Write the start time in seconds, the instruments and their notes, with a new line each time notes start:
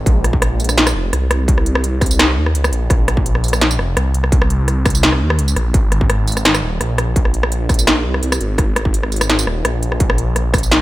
0.06 detuned saw bass A#1, kick, closed hi-hat
0.24 cross-stick, closed hi-hat
0.33 kick
0.42 cross-stick, closed hi-hat
0.60 closed hi-hat, tambourine
0.64 closed hi-hat
0.69 cross-stick, tambourine
0.78 snare, closed hi-hat
0.87 cross-stick, tambourine
0.95 detuned saw bass F1
1.13 detuned saw bass C2, cross-stick, closed hi-hat
1.31 cross-stick, closed hi-hat
1.48 kick, closed hi-hat
1.58 cross-stick
1.66 closed hi-hat
1.75 cross-stick
1.84 closed hi-hat
2.01 kick, cross-stick, closed hi-hat, tambourine
2.06 closed hi-hat
2.11 tambourine
2.19 cross-stick, snare, closed hi-hat
2.37 detuned saw bass D#2
2.46 cross-stick
2.55 detuned saw bass C#2, closed hi-hat
2.64 cross-stick, tambourine
2.72 detuned saw bass A#1, closed hi-hat
2.90 detuned saw bass A#1, kick, cross-stick, closed hi-hat
3.08 cross-stick, closed hi-hat
3.17 kick
3.26 closed hi-hat
3.35 cross-stick
3.44 closed hi-hat, tambourine
3.48 closed hi-hat
3.53 cross-stick, tambourine
3.61 snare, closed hi-hat
3.71 tambourine
3.79 detuned saw bass F1, cross-stick
3.97 detuned saw bass C2, cross-stick, closed hi-hat
4.14 closed hi-hat
4.24 cross-stick
4.32 kick, closed hi-hat
4.42 cross-stick
4.50 closed hi-hat
4.68 cross-stick, closed hi-hat
4.85 kick, cross-stick, closed hi-hat, tambourine
4.90 closed hi-hat
4.95 tambourine
5.03 snare, closed hi-hat
5.12 cross-stick
5.21 detuned saw bass D#2
5.30 cross-stick
5.39 detuned saw bass C#2, closed hi-hat
5.48 tambourine
5.56 detuned saw bass A#1, cross-stick, closed hi-hat
5.74 detuned saw bass G#1, kick, closed hi-hat
5.92 cross-stick, closed hi-hat
6.01 kick
6.10 cross-stick, closed hi-hat
6.27 closed hi-hat, tambourine
6.32 closed hi-hat
6.37 cross-stick, tambourine
6.45 snare, closed hi-hat
6.54 cross-stick, tambourine
6.63 detuned saw bass D#1
6.81 detuned saw bass A#1, cross-stick, closed hi-hat
6.98 cross-stick, closed hi-hat
7.16 kick, closed hi-hat
7.25 cross-stick
7.34 closed hi-hat
7.43 cross-stick
7.52 closed hi-hat
7.69 kick, cross-stick, closed hi-hat, tambourine
7.74 closed hi-hat
7.79 tambourine
7.87 cross-stick, snare, closed hi-hat
8.05 detuned saw bass C2
8.14 cross-stick
8.23 detuned saw bass C2, closed hi-hat
8.32 cross-stick, tambourine
8.41 detuned saw bass G#1, closed hi-hat
8.58 detuned saw bass G#1, kick, cross-stick, closed hi-hat
8.76 cross-stick, closed hi-hat
8.85 kick
8.94 closed hi-hat
9.03 cross-stick
9.12 closed hi-hat, tambourine
9.16 closed hi-hat
9.21 cross-stick, tambourine
9.30 snare, closed hi-hat
9.39 tambourine
9.47 detuned saw bass D#1, cross-stick
9.65 detuned saw bass A#1, cross-stick, closed hi-hat
9.83 closed hi-hat
9.92 cross-stick
10.00 kick, closed hi-hat
10.10 cross-stick
10.18 closed hi-hat
10.36 cross-stick, closed hi-hat
10.54 kick, cross-stick, closed hi-hat, tambourine
10.58 closed hi-hat
10.63 tambourine
10.71 snare, closed hi-hat